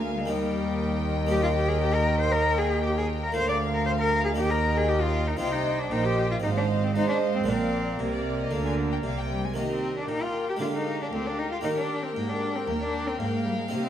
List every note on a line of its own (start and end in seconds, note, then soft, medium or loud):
0.00 0.25 D2 soft
0.00 0.26 D2 medium
0.00 0.23 G#3 soft
0.00 0.24 A#3 soft
0.00 0.25 F4 soft
0.00 0.27 A#4 soft
0.00 0.26 F5 soft
0.00 0.26 G#5 soft
0.16 0.27 G#3 soft
0.26 3.35 D#2 medium
0.26 3.31 D#2 soft
0.26 1.32 G3 medium
0.26 1.25 A#3 soft
0.26 1.27 D#4 soft
0.26 4.34 A#4 soft
0.26 3.35 D#5 medium
0.26 3.35 G5 medium
1.27 3.29 A#3 soft
1.27 3.30 D#4 soft
1.27 1.42 G4 medium
1.43 1.48 F4 medium
1.56 1.70 G4 medium
1.69 1.81 G#4 medium
1.81 1.95 G4 medium
1.94 2.19 A#4 medium
2.20 2.33 C5 medium
2.32 2.59 A#4 medium
2.58 2.83 G#4 medium
2.84 2.96 G4 medium
2.98 3.06 G#4 medium
3.23 3.35 A#4 medium
3.32 4.34 D2 soft
3.32 4.38 D2 medium
3.32 4.33 A#3 soft
3.32 4.34 F4 soft
3.32 3.48 C5 medium
3.32 4.35 F5 medium
3.32 4.36 F5 soft
3.49 3.57 D5 medium
3.74 3.85 A#4 medium
3.86 3.91 C5 medium
3.99 4.24 A#4 medium
4.25 4.30 G#4 medium
4.34 5.40 D#2 medium
4.34 5.36 D#2 soft
4.34 5.40 D#2 medium
4.34 5.35 A#3 soft
4.34 5.36 D#4 soft
4.34 4.52 G4 medium
4.34 5.38 A#4 soft
4.34 5.39 D#5 medium
4.34 5.38 G5 medium
4.50 4.78 A#4 medium
4.77 4.90 G#4 medium
4.88 5.03 G4 medium
5.01 5.29 F4 medium
5.27 5.38 D#4 medium
5.37 5.88 C2 medium
5.37 5.87 C3 medium
5.37 5.88 C3 medium
5.37 6.38 C4 soft
5.37 6.39 D#4 soft
5.37 5.54 F4 medium
5.37 5.88 C5 soft
5.37 5.88 D#5 soft
5.37 5.88 G5 medium
5.52 5.80 D#4 medium
5.79 5.93 D4 medium
5.91 6.42 A#1 medium
5.91 6.39 A#2 soft
5.91 6.42 A#2 medium
5.91 6.07 D#4 medium
5.91 6.42 C5 soft
5.91 6.42 D#5 soft
5.91 6.42 G5 soft
6.05 6.30 G4 medium
6.31 6.36 F4 medium
6.40 6.94 G#1 medium
6.40 6.91 G#2 soft
6.40 6.94 G#2 medium
6.40 7.43 C4 soft
6.40 6.48 D#4 medium
6.40 6.94 C5 soft
6.40 6.93 D#5 soft
6.40 6.94 F5 medium
6.57 6.65 D4 medium
6.84 6.95 C4 medium
6.94 7.47 G#2 medium
6.94 7.44 G#3 soft
6.94 7.48 G#3 soft
6.94 7.08 D#4 medium
6.94 7.46 C5 medium
6.94 7.46 D#5 soft
6.94 7.46 F5 soft
7.08 7.16 D4 medium
7.35 7.47 C4 medium
7.44 8.00 A#1 medium
7.44 7.96 A#2 soft
7.44 8.00 A#2 medium
7.44 9.52 A#3 soft
7.44 9.53 D4 soft
7.44 7.99 A#4 soft
7.44 7.98 D5 soft
7.44 7.99 F5 soft
7.48 8.01 C4 medium
7.99 8.51 C2 medium
7.99 8.48 C3 soft
7.99 8.52 C3 medium
7.99 9.30 A#3 medium
7.99 8.12 A#4 medium
7.99 9.34 A#4 medium
7.99 9.34 D5 soft
8.13 8.39 D5 soft
8.39 8.52 D#5 medium
8.51 9.04 D2 medium
8.51 9.00 D3 soft
8.51 9.04 D3 medium
8.51 8.65 F5 medium
8.65 8.73 G#5 medium
8.92 8.97 G5 medium
9.03 9.57 C2 medium
9.03 9.53 C3 soft
9.03 9.56 C3 medium
9.03 9.17 F5 medium
9.19 9.45 G5 medium
9.31 9.46 G3 medium
9.45 9.56 G#3 soft
9.45 9.58 G#5 soft
9.54 10.05 D#3 soft
9.54 10.06 D#3 soft
9.54 10.56 A#3 soft
9.54 9.62 A#3 medium
9.54 10.57 D#4 soft
9.54 10.06 G4 soft
9.54 10.06 A#4 soft
9.54 10.06 D#5 soft
9.71 9.96 C4 medium
9.97 10.10 D4 soft
10.08 10.57 A#2 soft
10.08 10.24 D#4 medium
10.08 12.69 G4 soft
10.08 11.11 A#4 soft
10.08 10.61 G5 soft
10.22 10.48 F4 medium
10.49 10.54 G4 soft
10.57 11.59 G#3 soft
10.57 11.60 A#3 soft
10.57 11.61 F4 soft
10.61 11.09 D3 soft
10.61 11.09 D3 medium
10.61 10.67 F4 medium
10.61 11.65 F5 soft
10.75 11.00 D#4 medium
11.02 11.07 D4 medium
11.13 11.61 D2 soft
11.13 11.28 C4 medium
11.13 13.68 A#4 soft
11.27 11.40 D4 medium
11.39 11.51 D#4 soft
11.52 11.57 F4 medium
11.61 12.12 D#3 soft
11.61 12.13 D#3 medium
11.61 12.13 A#3 soft
11.61 13.67 D#4 soft
11.61 11.69 D#4 medium
11.61 13.18 G5 soft
11.77 12.04 D4 soft
12.03 12.15 C4 soft
12.15 12.65 G#2 soft
12.15 12.30 A#3 medium
12.29 12.57 D4 medium
12.55 12.68 C4 soft
12.68 13.16 D#2 soft
12.68 13.17 D#2 medium
12.68 12.74 A#3 medium
12.68 13.20 A#4 soft
12.81 13.08 D4 medium
13.07 13.20 C4 soft
13.19 13.68 G#2 medium
13.19 13.68 G#2 soft
13.19 13.47 A#3 medium
13.19 13.89 F5 soft
13.19 13.72 G5 soft
13.45 13.57 G3 medium
13.58 13.63 G#3 soft
13.69 13.89 C3 soft
13.69 13.89 C3 medium
13.69 13.85 A#3 medium
13.69 13.89 C4 soft
13.69 13.89 D#4 soft
13.69 13.89 G4 soft
13.69 13.89 D#5 soft
13.84 13.89 C4 medium